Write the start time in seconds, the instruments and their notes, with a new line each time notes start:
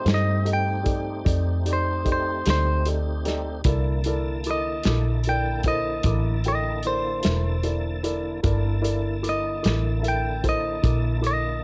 Already playing: tonewheel organ A3 C4 D#4 G4
0.05 fingered electric bass G2, upright piano D#4 G4 A4 C5, snare, closed hi-hat
0.14 clean electric guitar D#5
0.45 upright piano D#4 G4 A4 D#5, closed hi-hat
0.53 clean electric guitar G5
0.83 upright piano D#4 G4 A4 D5, kick, closed hi-hat
1.24 fingered electric bass F2, upright piano D#4 G4 A4 D5, kick, closed hi-hat
1.65 upright piano D#4 G4 A4 D5, closed hi-hat
1.73 clean electric guitar C5
2.05 upright piano D#4 G4 A4 D5, kick, closed hi-hat
2.12 clean electric guitar C5
2.45 fingered electric bass D2, upright piano D#4 G4 A4 D5, snare, closed hi-hat
2.50 clean electric guitar C5
2.85 upright piano D#4 G4 A4 D5, closed hi-hat
3.25 upright piano D#4 G4 A4 D5, snare, closed hi-hat
3.64 fingered electric bass C2, tonewheel organ D3 A#3 E4 A5, upright piano E4 A4 A#4 D5, kick, closed hi-hat
4.04 upright piano E4 A4 A#4 D5, closed hi-hat
4.44 upright piano E4 A4 A#4 D6, closed hi-hat
4.51 clean electric guitar D#5
4.83 fingered electric bass A#1, upright piano E4 A4 A#4 D6, snare, closed hi-hat
5.24 upright piano E4 A4 A#4, closed hi-hat
5.28 upright piano D5, clean electric guitar G5
5.63 upright piano E4 A4 A#4 C5, kick, closed hi-hat
5.68 clean electric guitar D#5
6.03 fingered electric bass A1, upright piano E4 A4 A#4 D6, kick, closed hi-hat
6.44 upright piano E4 A4 A#4 G5, closed hi-hat
6.48 clean electric guitar D#5
6.83 upright piano E4 A4 A#4 D5, closed hi-hat
6.87 clean electric guitar C5
7.23 fingered electric bass E1, upright piano E4 A4 A#4 E5, snare, closed hi-hat
7.63 upright piano E4 A4 A#4 D5, closed hi-hat
8.03 upright piano E4 A4 A#4 D5, closed hi-hat
8.43 fingered electric bass G1, tonewheel organ D3 A#3 E4 A5, upright piano E4 A4 A#4 D5, kick, closed hi-hat
8.82 upright piano E4 A4 A#4 D5, closed hi-hat
9.22 upright piano E4 A4 A#4 D6, closed hi-hat
9.29 clean electric guitar D#5
9.63 fingered electric bass A1, upright piano E4 A4 A#4 D6, snare, closed hi-hat
10.03 upright piano E4 A4 A#4 E5, closed hi-hat
10.08 clean electric guitar G5
10.43 upright piano E4 A4 A#4 C5, kick, closed hi-hat
10.49 clean electric guitar D#5
10.83 fingered electric bass A#1, upright piano E4 A4 A#4 D6, kick, closed hi-hat
11.21 upright piano E4 A4 A#4 D6, closed hi-hat
11.27 clean electric guitar D#5